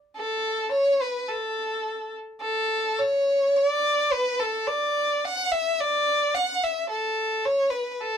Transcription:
0.17 0.69 A4 medium
0.72 1.03 C#5 loud
1.02 1.31 B4 medium
1.30 2.14 A4 medium
2.41 3.01 A4 medium
2.99 3.58 C#5 medium
3.56 4.14 D5 loud
4.13 4.41 B4 loud
4.40 4.69 A4 medium
4.67 5.26 D5 medium
5.25 5.53 F#5 loud
5.52 5.82 E5 medium
5.81 6.36 D5 loud
6.35 6.65 F#5 medium
6.64 6.89 E5 medium
6.90 7.47 A4 medium
7.45 7.72 C#5 medium
7.70 7.91 B4 medium
7.91 8.02 B4 medium
8.01 8.18 A4 medium

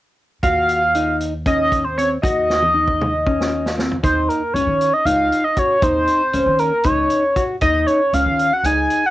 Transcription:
0.43 2.19 D#2 medium
0.43 0.81 F#4 medium
0.43 1.16 F5 loud
0.43 kick medium
0.43 closed hi-hat medium
0.69 closed hi-hat soft
0.95 1.33 D#4 medium
0.95 closed hi-hat medium
1.21 closed hi-hat soft
1.46 1.84 C#4 medium
1.46 1.86 D#5 medium
1.46 kick medium
1.46 closed hi-hat medium
1.72 kick medium
1.72 closed hi-hat soft
1.84 1.97 C5 medium
1.98 2.17 C4 medium
1.98 2.09 C#5 medium
1.98 closed hi-hat medium
2.22 4.00 D#2 medium
2.22 2.61 F#4 medium
2.22 3.73 D#5 loud
2.22 kick medium
2.22 closed hi-hat medium
2.50 snare soft
2.62 high tom soft
2.74 3.12 D#4 medium
2.88 kick soft
3.01 mid tom medium
3.26 3.64 C#4 medium
3.26 kick medium
3.41 snare medium
3.66 snare medium
3.77 3.96 C4 medium
3.77 snare medium
3.91 floor tom medium
4.03 4.25 D#2 medium
4.03 4.41 D#4 medium
4.03 4.30 C5 medium
4.03 kick medium
4.03 closed hi-hat medium
4.28 4.55 A#4 medium
4.28 closed hi-hat soft
4.53 4.65 C#2 medium
4.53 4.93 C#4 medium
4.53 4.95 C#5 medium
4.53 closed hi-hat medium
4.66 4.89 D#3 medium
4.81 closed hi-hat medium
4.93 5.07 D#5 medium
5.05 5.28 C#2 medium
5.05 5.43 D#4 medium
5.05 5.46 F5 medium
5.05 closed hi-hat medium
5.32 closed hi-hat soft
5.44 5.60 D#5 medium
5.56 5.76 F#4 medium
5.56 5.84 C#5 medium
5.56 kick medium
5.56 closed hi-hat medium
5.82 6.04 D#2 medium
5.82 6.21 D#4 medium
5.82 6.61 C5 loud
5.82 kick loud
5.82 closed hi-hat medium
6.07 closed hi-hat soft
6.33 6.45 C#2 medium
6.33 6.71 C#4 medium
6.33 closed hi-hat medium
6.46 6.69 D#3 medium
6.59 6.86 A#4 medium
6.59 closed hi-hat soft
6.84 7.07 C#2 medium
6.84 7.23 D#4 medium
6.84 7.43 C#5 medium
6.84 kick medium
6.84 closed hi-hat medium
7.10 closed hi-hat soft
7.36 7.56 F#4 medium
7.36 kick medium
7.36 closed hi-hat soft
7.61 7.84 D#2 medium
7.61 8.00 D#4 medium
7.61 7.88 D#5 loud
7.61 kick medium
7.61 closed hi-hat medium
7.87 8.15 C#5 medium
7.87 closed hi-hat soft
8.13 8.24 C#2 medium
8.13 8.52 C#4 medium
8.13 8.55 F5 medium
8.13 closed hi-hat medium
8.26 8.48 D#3 medium
8.39 closed hi-hat medium
8.53 8.67 F#5 medium
8.63 8.86 C#2 medium
8.63 9.03 D#4 medium
8.63 9.08 G#5 medium
8.63 closed hi-hat medium
8.90 closed hi-hat soft
9.06 9.11 F#5 medium

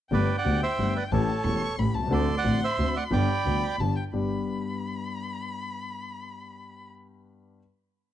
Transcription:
0.11 0.26 G1 medium
0.11 0.26 G2 medium
0.11 0.26 D3 medium
0.11 0.26 A3 medium
0.11 0.26 B3 medium
0.11 0.26 G4 medium
0.11 0.36 B4 medium
0.11 0.37 D5 medium
0.11 1.13 G5 medium
0.38 0.61 D5 medium
0.38 0.61 F#5 medium
0.45 0.59 D2 soft
0.45 0.60 D2 soft
0.45 0.60 D3 soft
0.45 0.60 A3 soft
0.45 0.60 B3 soft
0.45 0.59 G4 soft
0.63 0.94 C5 medium
0.63 0.97 E5 medium
0.78 0.93 G1 soft
0.78 0.93 G2 soft
0.78 0.93 D3 soft
0.78 0.93 A3 soft
0.78 0.93 B3 soft
0.78 0.93 G4 soft
0.96 1.03 B4 medium
0.96 1.04 D5 medium
1.12 1.26 A1 medium
1.12 1.27 A1 medium
1.12 1.26 A2 medium
1.12 1.26 E3 medium
1.12 1.27 A3 medium
1.12 1.27 C#4 medium
1.12 1.26 G4 medium
1.12 1.75 A4 medium
1.12 1.76 C#5 medium
1.12 1.45 A5 medium
1.44 1.59 E1 soft
1.44 1.60 E1 medium
1.44 1.59 E2 soft
1.44 1.59 E3 soft
1.44 1.59 A3 soft
1.44 1.59 C#4 soft
1.44 1.60 G4 soft
1.44 1.80 C#6 medium
1.78 1.93 A1 medium
1.78 1.93 A1 soft
1.78 1.93 A2 soft
1.78 1.93 E3 soft
1.78 1.93 A3 soft
1.78 1.93 C#4 soft
1.78 1.93 G4 soft
1.78 1.96 B5 medium
1.94 2.10 C2 soft
1.94 2.14 A5 medium
1.99 2.04 B1 soft
1.99 2.08 C2 medium
2.07 2.12 C#2 medium
2.07 2.26 D2 medium
2.07 2.26 D3 medium
2.07 2.26 A3 medium
2.07 2.26 C4 medium
2.07 2.26 F#4 medium
2.12 2.36 A4 medium
2.12 2.35 D5 medium
2.12 3.15 C6 medium
2.37 2.60 D5 medium
2.37 2.64 F#5 medium
2.44 2.59 A1 soft
2.44 2.59 A1 medium
2.44 2.59 A2 soft
2.44 2.59 D3 soft
2.44 2.59 A3 soft
2.44 2.59 C4 soft
2.44 2.59 F#4 soft
2.64 2.94 C5 medium
2.64 2.98 E5 medium
2.78 2.93 D2 medium
2.78 2.93 D2 soft
2.78 2.93 D3 soft
2.78 2.93 A3 soft
2.78 2.93 C4 soft
2.78 2.93 F#4 soft
2.96 3.04 D5 medium
2.96 3.04 F#5 medium
3.11 3.26 G1 medium
3.11 3.26 G2 medium
3.11 3.26 D3 medium
3.11 3.26 G3 medium
3.11 3.26 B3 medium
3.11 3.26 G4 medium
3.11 3.76 D5 medium
3.11 3.76 G5 medium
3.11 3.81 B5 medium
3.45 3.60 D2 medium
3.45 3.60 D2 soft
3.45 3.60 D3 soft
3.45 3.60 G3 soft
3.45 3.60 B3 soft
3.45 3.60 G4 soft
3.79 3.94 G1 medium
3.79 3.95 G1 soft
3.79 3.95 G2 soft
3.79 3.94 D3 soft
3.79 3.95 G3 soft
3.79 3.95 B3 soft
3.79 3.95 G4 soft
3.79 3.96 A5 medium
3.96 4.04 G5 medium
4.13 4.27 G1 medium
4.13 7.59 G2 soft
4.13 7.59 B3 soft
4.13 7.59 D4 soft
4.13 7.59 G4 medium
4.13 6.89 B5 medium

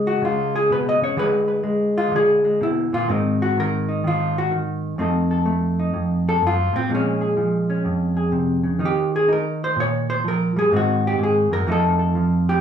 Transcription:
0.00 0.21 C#3 medium
0.00 1.17 G#3 medium
0.07 0.22 F#4 medium
0.22 1.00 C#3 medium
0.22 0.55 F4 medium
0.56 0.71 G#4 medium
0.70 1.01 B2 medium
0.70 0.87 B4 medium
0.89 1.03 D#5 loud
1.02 1.17 C#3 medium
1.02 1.18 C#5 medium
1.17 2.10 D3 medium
1.17 1.63 G#3 medium
1.17 2.14 G#4 soft
1.17 1.47 B4 loud
1.48 1.96 B4 soft
1.63 2.44 G#3 medium
1.98 2.13 F4 loud
2.11 3.06 D3 medium
2.16 2.62 G#4 loud
2.45 2.61 G#3 soft
2.61 2.92 B2 medium
2.61 2.93 E4 medium
2.93 3.09 A#2 medium
2.93 3.09 F4 medium
3.08 4.97 G#2 medium
3.08 3.56 D#3 medium
3.08 4.98 C4 medium
3.08 3.42 D#4 soft
3.08 3.57 A#4 soft
3.42 3.57 F#4 medium
3.57 4.03 D#3 medium
3.57 4.06 A#4 medium
3.89 4.36 D#4 soft
4.04 4.50 D#3 medium
4.04 4.37 F4 medium
4.38 4.53 F#4 loud
4.51 4.98 D#3 medium
4.98 5.92 F2 medium
4.98 5.44 A3 medium
4.98 6.75 C4 medium
4.98 5.78 D#4 medium
4.98 5.30 A4 soft
5.31 6.26 A4 soft
5.46 6.88 A3 medium
5.80 6.75 D#4 soft
5.94 6.41 F2 medium
6.29 6.44 A4 loud
6.42 6.72 F#2 medium
6.47 6.76 F4 medium
6.73 6.90 A2 medium
6.73 6.91 C4 medium
6.89 7.85 A#2 medium
6.89 7.36 F3 soft
6.89 8.80 G#3 soft
6.95 7.24 C#4 medium
7.21 8.16 G#4 soft
7.37 8.79 F3 medium
7.70 8.79 C#4 soft
7.85 8.81 F2 medium
8.17 8.79 G#4 soft
8.32 8.63 C3 medium
8.64 8.80 C#3 medium
8.79 10.23 D#3 medium
8.79 9.28 D#4 soft
8.85 9.15 G4 medium
9.16 9.30 G#4 medium
9.28 10.70 D#4 medium
9.33 9.62 A#4 medium
9.64 9.78 C5 medium
9.76 10.70 A#2 medium
9.80 10.09 C#5 loud
10.10 10.25 C5 loud
10.24 10.56 F3 medium
10.28 10.58 A#4 medium
10.56 10.72 G3 medium
10.56 10.73 G#4 medium
10.71 11.18 G#2 medium
10.71 11.67 D#3 medium
10.71 11.66 C4 soft
10.71 11.66 D#4 medium
10.76 11.06 F#4 medium
11.07 11.21 G4 loud
11.19 11.51 G#2 medium
11.23 11.53 G#4 medium
11.51 11.66 F#2 medium
11.51 11.68 A#4 loud
11.67 12.61 F2 medium
11.67 12.14 F3 medium
11.67 12.61 A3 medium
11.67 12.61 D#4 medium
11.72 11.98 A4 medium
11.99 12.47 A4 soft
12.15 12.61 F3 medium
12.49 12.61 G4 loud

